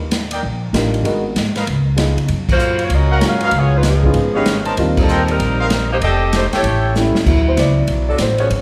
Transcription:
Already playing: D#2
0.11 snare, hi-hat pedal, ride
0.31 A#4 D5 D#5 G5, ride
0.43 A#1
0.73 A1 G3 D4 D#4 F4 A#4, snare, hi-hat pedal, ride
0.94 ride
1.03 G#1 G#3 B3 D#4 F#4 A#4, ride
1.35 G#2, snare, hi-hat pedal, ride
1.55 A#4 B4 D#5 F5, snare, ride
1.67 C#2, ride
1.96 G#3 B3 D#4 F4 G#4, snare, hi-hat pedal, ride
2.17 C#3, ride
2.28 F#2, ride
2.49 A#3 F4 F#4 C5, kick, crash
2.59 hi-hat pedal
2.79 F4, ride
2.83 A#3 F#4 C#5
2.90 C#2, ride
2.94 C#4 F#4 A#4 D#5
3.10 A#4 C#5 F5 F#5
3.20 G#2 F#3 A#3 C#4 F4 G#4, snare, hi-hat pedal, ride
3.26 C#4 F#4 A#4 F5
3.40 B4 C#5 D#5 F5, ride
3.46 C#4 F#4 A#4 F5
3.51 C#2, ride
3.58 B3 F4 G#4 C#5
3.76 G#3 D#4 F4 B4
3.83 snare, hi-hat pedal, ride
3.88 F3 B3 D#4 G#4
4.04 G#3 B3 C#4 D#4 F4, kick
4.14 G#1, ride
4.35 G#3 B3 C#4 D#4 G4 B4 C#5 D#5 F5
4.46 snare, hi-hat pedal, ride
4.65 A#4 C5 D#5 A5, ride
4.77 D#2 G3 A#3 C4 D#4 F4, ride
4.97 G3 C4 D#4 A4, kick, crash
5.08 A#4 C5 D#5 G5, hi-hat pedal
5.28 G3 C4 D#4 A#4, ride
5.39 A#1, ride
5.59 A#4 C5 D#5 F5
5.70 snare, hi-hat pedal, ride
5.92 A#3 D#4 G4 C5
6.01 F1 C4 G4 A4 D5 D#5 G5, ride
6.33 D#4 G4 C5, snare, hi-hat pedal, ride
6.37 A3
6.52 A3 E4 G4 A4 C#5 E5 G5, muted upright bass stroke, snare, ride
6.56 C#5
6.63 A1, ride
6.95 G3 A3 B3 C#4 E4, snare, hi-hat pedal
7.15 muted upright bass stroke, snare
7.26 D2 F#3 B3 E4, kick, crash
7.48 C5
7.57 C#2 D5, snare, hi-hat pedal, ride
7.87 B1, ride
8.09 F#3 B3 D4 A4 D5
8.18 A1 C5, snare, hi-hat pedal, ride
8.38 F3 B3 C#4 G#4 C#5, ride
8.50 G#1, ride

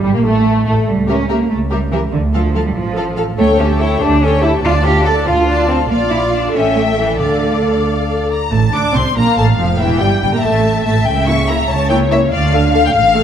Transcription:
0.03 G1 G3
0.13 A#1 A#3
0.24 A1 A3
0.65 A1 A3
0.88 C#2 G3
1.08 C#4 G4 A#4 E5
1.29 A#3 G4 A#4 E5
1.50 C#2 A3
1.71 G3 G4 A#4 E5
1.91 E3 G4 A#4 E5
2.13 D2 D3
2.33 F3 A4 F5
2.54 F3 A4 F5
2.66 G3
2.75 A1 F3
2.95 A4 F5
3.16 A4 F5
3.37 D2 A3 A4 C#5 G5
3.58 C#4 G4 A4 E5
3.79 E4 A4 C#5 G5
4.00 D2 D4 G4 A4 E5
4.21 C#4 A4 C#5 G5
4.42 E4 G4 A4 E5
4.62 D2 D4 F4 D5 A5
4.83 F4 G4 A4 F5
5.05 D4 A4 D5 A5
5.25 D2 F4 A4 F5
5.47 D4 D5 A5
5.67 C4 F4 A4 F5
5.89 A#1 A#3 F4 D5 F5
6.10 E4
6.32 D4
6.53 A1 C#4 A4 E5 G5
6.76 A3
6.98 E3
7.19 D2 D3 A4 D5 F5
8.31 A#5
8.51 A1 A2 A3 A5
8.73 D2 D3 D4 D6
8.94 C2 C3 C4 C6
9.15 A#1 A#2 A#3 F5 A#5
9.37 A1 A2 A3 A5
9.58 F1 F2 F3 F5
9.79 E1 E2 E3 E5 G5
10.00 G1 G2 G3 G5
10.22 G1 G2 G3 G5
10.33 A#2 A#3 A#5
10.43 A1 A2 A3 E5 A5
10.86 A1 A2 A3 A5
11.06 C#2 C#3 G5
11.27 A#3 E4 C#6
11.48 A#3 E4 A#5
11.69 C#2 C#3 C#5 A5
11.89 A#3 E4 G5
12.11 A#3 E4 E5
12.32 D2 D3 D5 F5
12.52 A3 A4 F5
12.73 A3 A4 F5
12.85 G5
12.95 A1 A2 F5
13.14 A3 A4

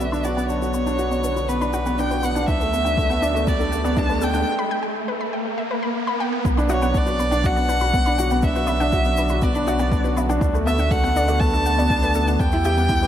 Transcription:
Already playing: B1 D3 F#3 B3 D4 F#4, riser
0.00 B3 E5, shaker
0.12 D4 B5, shaker
0.24 F#4 D5 F#5, shaker
0.37 B3 F#5, shaker
0.49 D4 C#5, shaker
0.62 F#4 B4, shaker
0.74 B3 B5, shaker
0.86 D4 F#5, shaker
0.99 F#4, shaker
1.11 B3 D5, shaker
1.23 D4 B4, shaker
1.36 F#4 B5, shaker
1.49 B3 B4, shaker
1.61 D4 B5, shaker
1.73 F#4 F#5, shaker
1.86 B3 F#5, shaker
1.98 D4 G5, shaker
2.11 F#4 B4, shaker
2.23 B3 F#5 B5, shaker
2.35 D4 F#5, shaker
2.48 D2 A3 D4 E5, kick, shaker
2.60 A3 B4, shaker
2.72 B3 A4, shaker
2.85 D4 F#5, shaker
2.97 A3, kick, shaker
3.09 B3 F#5, shaker
3.22 D4 D5, shaker
3.35 A3 D5, shaker
3.47 B3 D5, kick, shaker
3.60 D4 A4, shaker
3.72 A3 F#5, shaker
3.85 B3 D5, shaker
3.97 D4 A5, kick, shaker
4.09 A3 B4, shaker
4.21 B3 A4 G5, shaker
4.34 D4 F#5, shaker
4.59 B5
4.71 G5
4.83 G5
5.08 B4
5.21 B5
5.33 G5
5.58 E5
5.71 B4
5.83 B5
6.07 B5
6.20 G5
6.33 G5
6.45 B1 D3 F#3 B3 F#4, kick, shaker
6.57 D4 B5, shaker
6.69 F#4 C#5 F#5, low woodblock, shaker
6.82 B3 F#5, shaker
6.93 D4, kick, shaker
6.98 D5
7.06 F#4 B4, shaker
7.19 B3 B5, shaker
7.31 D4 F#5, shaker
7.44 F#4 F#5, kick, shaker
7.56 B3 D5, shaker
7.69 D4 B4, shaker
7.80 F#4 B5, shaker
7.94 B3, kick, shaker
8.06 D4 B5, shaker
8.18 F#4 F#5, shaker
8.30 B3 F#5, shaker
8.43 D4 E5, kick, shaker
8.55 F#4 B4, shaker
8.67 B3 B5, low woodblock, shaker
8.80 D4 F#5, shaker
8.92 F#4, kick, shaker
9.04 B3 D5, shaker
9.17 D4 B4, shaker
9.29 F#4 B5, shaker
9.42 B3 D5, kick, shaker
9.55 D4 B5, shaker
9.67 F#4 F#5, low woodblock, shaker
9.79 B3 F#5, shaker
9.92 D4, kick, shaker
10.04 F#4 B4, shaker
10.17 B3 B5, low woodblock, shaker
10.29 D4 F#5, shaker
10.41 D2 A3 D4, kick, shaker
10.54 A3 B4, shaker
10.66 B3 A4 E5, low woodblock, shaker
10.78 D4 F#5, shaker
10.90 A3 F#5, kick, shaker
11.03 B3 F#5, shaker
11.16 D4 D5, shaker
11.28 A3 D5, shaker
11.40 B3 A5, kick, shaker
11.54 D4 A4, shaker
11.66 A3 F#5, shaker
11.78 B3 D5, shaker
11.90 D4, kick, shaker
12.03 A3 B4, shaker
12.14 B3 A4, shaker
12.27 D4 F#5, shaker
12.39 E2 E3 G3 B3 G4 G5, kick, shaker
12.52 E4 B5, shaker
12.65 G4 G5, low woodblock, shaker
12.77 B3 G5, shaker
12.89 E4, kick, shaker
13.02 G4 B4, shaker

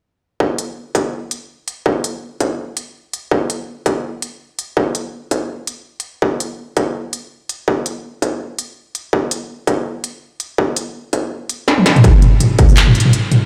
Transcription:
0.40 kick
0.58 closed hi-hat
0.95 kick, closed hi-hat
1.31 closed hi-hat
1.68 closed hi-hat
1.86 kick
2.04 closed hi-hat
2.40 kick, closed hi-hat
2.77 closed hi-hat
3.13 closed hi-hat
3.31 kick
3.50 closed hi-hat
3.86 kick, closed hi-hat
4.22 closed hi-hat
4.59 closed hi-hat
4.77 kick
4.95 closed hi-hat
5.31 kick, closed hi-hat
5.67 closed hi-hat
6.00 closed hi-hat
6.22 kick
6.40 closed hi-hat
6.77 kick, closed hi-hat
7.13 closed hi-hat
7.49 closed hi-hat
7.68 kick
7.86 closed hi-hat
8.22 kick, closed hi-hat
8.59 closed hi-hat
8.95 closed hi-hat
9.13 kick
9.31 closed hi-hat
9.67 kick, closed hi-hat
10.04 closed hi-hat
10.40 closed hi-hat
10.58 kick
10.76 closed hi-hat
11.13 kick, closed hi-hat
11.49 closed hi-hat
11.68 snare
11.78 high tom
11.86 snare, closed hi-hat
11.96 closed hi-hat, mid tom
12.04 kick, closed hi-hat, mid tom
12.22 closed hi-hat, mid tom
12.40 closed hi-hat, mid tom
12.59 kick, closed hi-hat
12.69 mid tom, shaker
12.77 clap, closed hi-hat
12.87 mid tom
12.95 closed hi-hat, shaker
13.00 closed hi-hat
13.05 mid tom
13.13 closed hi-hat
13.32 closed hi-hat, mid tom

